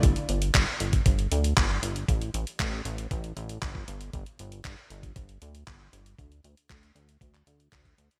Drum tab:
HH |xxxxx-xxxxxxx-xx|xxxxx-xxxxxxx-xx|xxxxx-xxxxxxx-xx|xxxxxxxxxxxxxxxx|
CP |----x-------x---|----x-------x---|----x-------x---|----x----x--x---|
BD |o---o--oo---o---|o---o---o---oo--|o---o--oo---o---|o---o---o---oo--|